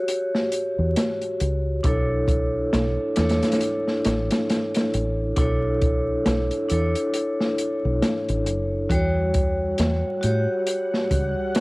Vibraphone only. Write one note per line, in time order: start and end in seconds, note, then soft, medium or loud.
0.00 1.87 F#4 medium
0.00 1.86 G4 medium
0.00 1.86 C#5 medium
1.83 3.12 D4 medium
1.83 3.13 E4 medium
1.83 3.14 A4 medium
1.88 3.14 C#5 medium
3.16 5.33 D4 medium
3.16 5.33 E4 medium
3.16 5.34 A4 medium
3.21 5.35 C#5 medium
5.36 6.65 D4 medium
5.36 6.66 E4 medium
5.36 6.66 A4 medium
5.41 6.67 C#5 medium
6.68 8.85 D4 medium
6.68 8.86 E4 medium
6.68 8.87 A4 medium
6.73 8.88 C#5 medium
8.89 10.19 G3 medium
8.89 10.18 F#4 medium
8.94 10.20 C#5 medium
10.21 11.60 F#4 medium
10.21 11.60 G4 medium
10.26 11.60 C#5 medium